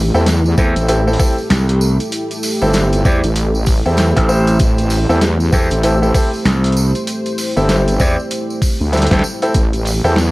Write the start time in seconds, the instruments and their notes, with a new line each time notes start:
Already playing: wobble bass A1, analog synth pad A3 E4 G4 A4
0.14 wobble bass E2, grand piano C4 E4 G4 A4, tambourine
0.26 snare, closed hi-hat, tambourine
0.46 tambourine
0.58 slap bass E2, grand piano C4 E4 G4 A4, kick, tambourine
0.76 wobble bass A1, closed hi-hat, tambourine
0.88 grand piano C4 E4 G4 A4, closed hi-hat, tambourine
1.07 grand piano C4 E4 G4 A4, tambourine
1.13 open hi-hat
1.19 grand piano C4 E4 G4 A4, kick, cross-stick, tambourine
1.38 tambourine
1.50 slap bass C2, snare, closed hi-hat, tambourine
1.69 closed hi-hat
1.81 tambourine
2.00 closed hi-hat, tambourine
2.12 closed hi-hat, tambourine
2.31 closed hi-hat, tambourine
2.43 open hi-hat, tambourine
2.61 wobble bass G1, grand piano C4 E4 G4 A4, tambourine
2.73 snare, closed hi-hat, tambourine
2.93 closed hi-hat, tambourine
3.05 slap bass E2, grand piano C4 E4 G4 D5, kick, tambourine
3.24 wobble bass A1, closed hi-hat, tambourine
3.36 closed hi-hat, tambourine
3.55 tambourine
3.66 kick, open hi-hat, tambourine
3.86 wobble bass E2, grand piano C4 E4 G4 A4, tambourine
3.97 snare, closed hi-hat, tambourine
4.16 slap bass A1, grand piano C4 E4 G4 A4, kick, cross-stick, closed hi-hat, tambourine
4.29 grand piano C4 E4 G4 C5, tambourine
4.47 closed hi-hat, tambourine
4.59 wobble bass A1, analog synth pad C5, kick, closed hi-hat, tambourine
4.78 closed hi-hat, tambourine
4.90 open hi-hat, tambourine
5.09 wobble bass E2, grand piano C4 E4 G4 A4, tambourine
5.21 snare, closed hi-hat, tambourine
5.40 tambourine
5.52 slap bass E2, grand piano C4 E4 G4 A4, kick, tambourine
5.71 wobble bass A1, closed hi-hat, tambourine
5.83 grand piano C4 E4 G4 A4, closed hi-hat, tambourine
6.02 grand piano C4 E4 G4 A4, tambourine
6.14 grand piano C4 E4 G4 A4, kick, cross-stick, open hi-hat, tambourine
6.33 tambourine
6.45 slap bass C2, snare, closed hi-hat, tambourine
6.64 closed hi-hat
6.66 closed hi-hat
6.72 closed hi-hat
6.77 tambourine
6.95 closed hi-hat, tambourine
7.07 closed hi-hat, tambourine
7.26 closed hi-hat, tambourine
7.38 open hi-hat, tambourine
7.57 wobble bass G1, grand piano C4 E4 G4 A4, tambourine
7.69 snare, closed hi-hat, tambourine
7.88 closed hi-hat, tambourine
8.00 slap bass E2, grand piano C4 E4 G4 D5, kick, tambourine
8.20 tambourine
8.31 closed hi-hat, tambourine
8.50 tambourine
8.62 kick, open hi-hat, tambourine
8.80 wobble bass D2, tambourine
8.93 grand piano C4 E4 G4 A4, snare, closed hi-hat, tambourine
8.97 snare, closed hi-hat
9.02 snare, closed hi-hat
9.07 closed hi-hat
9.11 slap bass D2, grand piano C4 E4 G4 A4, kick, cross-stick, snare, closed hi-hat, tambourine
9.13 snare
9.19 snare
9.24 tambourine
9.42 grand piano C4 E4 G4 A4, closed hi-hat, tambourine
9.54 wobble bass A1, analog synth pad D5, kick, closed hi-hat, tambourine
9.73 closed hi-hat, tambourine
9.85 open hi-hat, tambourine
10.04 wobble bass E2, grand piano C4 E4 G4 A4, tambourine
10.16 snare, tambourine